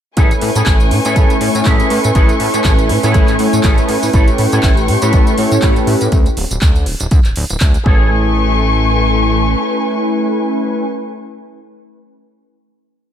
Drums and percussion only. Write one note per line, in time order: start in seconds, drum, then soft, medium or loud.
0.17 kick loud
0.17 closed hi-hat medium
0.17 tambourine medium
0.31 closed hi-hat soft
0.31 tambourine soft
0.41 open hi-hat loud
0.56 closed hi-hat medium
0.56 tambourine medium
0.66 kick loud
0.66 clap loud
0.66 closed hi-hat medium
0.66 tambourine medium
0.80 closed hi-hat soft
0.80 tambourine soft
0.91 open hi-hat loud
1.05 closed hi-hat medium
1.05 tambourine medium
1.16 kick loud
1.16 closed hi-hat medium
1.16 tambourine medium
1.30 closed hi-hat soft
1.30 tambourine soft
1.41 open hi-hat loud
1.55 closed hi-hat medium
1.55 tambourine medium
1.65 kick loud
1.65 clap loud
1.65 closed hi-hat medium
1.65 tambourine medium
1.80 closed hi-hat soft
1.80 tambourine soft
1.90 open hi-hat loud
2.04 closed hi-hat medium
2.04 tambourine medium
2.15 kick loud
2.15 closed hi-hat medium
2.15 tambourine medium
2.29 closed hi-hat soft
2.29 tambourine soft
2.40 open hi-hat loud
2.54 closed hi-hat medium
2.54 tambourine medium
2.64 kick loud
2.64 clap loud
2.64 closed hi-hat medium
2.64 tambourine medium
2.79 closed hi-hat soft
2.79 tambourine soft
2.89 open hi-hat loud
3.03 closed hi-hat medium
3.03 tambourine medium
3.14 kick loud
3.14 closed hi-hat medium
3.14 tambourine medium
3.28 clap soft
3.28 closed hi-hat soft
3.28 tambourine soft
3.39 open hi-hat loud
3.53 closed hi-hat medium
3.53 tambourine medium
3.63 kick loud
3.63 clap loud
3.63 closed hi-hat medium
3.63 tambourine medium
3.78 closed hi-hat soft
3.78 tambourine soft
3.89 open hi-hat loud
4.03 open hi-hat medium
4.03 tambourine medium
4.13 kick loud
4.13 closed hi-hat medium
4.13 tambourine medium
4.28 closed hi-hat soft
4.28 tambourine soft
4.38 open hi-hat loud
4.52 closed hi-hat medium
4.52 tambourine medium
4.63 kick loud
4.63 clap loud
4.63 closed hi-hat medium
4.63 tambourine medium
4.77 closed hi-hat soft
4.77 tambourine soft
4.88 open hi-hat loud
5.02 closed hi-hat medium
5.02 tambourine medium
5.13 kick loud
5.13 closed hi-hat medium
5.13 tambourine medium
5.27 closed hi-hat soft
5.27 tambourine soft
5.38 open hi-hat loud
5.52 closed hi-hat medium
5.52 tambourine medium
5.62 kick loud
5.62 clap loud
5.62 closed hi-hat medium
5.62 tambourine medium
5.76 closed hi-hat soft
5.76 tambourine soft
5.87 open hi-hat loud
6.01 closed hi-hat medium
6.01 tambourine medium
6.12 kick loud
6.12 closed hi-hat medium
6.12 tambourine medium
6.26 closed hi-hat soft
6.26 tambourine soft
6.37 open hi-hat loud
6.51 closed hi-hat soft
6.51 tambourine medium
6.61 kick loud
6.61 clap loud
6.61 closed hi-hat medium
6.61 tambourine medium
6.76 closed hi-hat soft
6.76 tambourine soft
6.86 open hi-hat loud
7.00 closed hi-hat medium
7.00 tambourine medium
7.11 kick loud
7.11 closed hi-hat medium
7.11 tambourine medium
7.24 clap soft
7.24 closed hi-hat soft
7.24 tambourine soft
7.36 open hi-hat loud
7.50 closed hi-hat soft
7.50 tambourine medium
7.60 kick loud
7.60 clap loud
7.60 closed hi-hat medium
7.60 tambourine medium
7.74 closed hi-hat soft
7.74 tambourine soft
7.86 kick loud